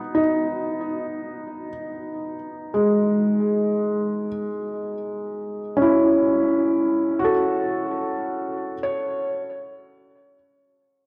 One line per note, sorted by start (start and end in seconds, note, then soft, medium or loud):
0.00 0.20 B3 soft
0.15 1.67 D#4 medium
2.74 4.26 G#3 soft
5.77 7.29 C#4 soft
5.82 7.32 E4 soft
7.20 8.72 F#4 medium
7.25 8.74 A4 soft
8.83 10.36 C#5 medium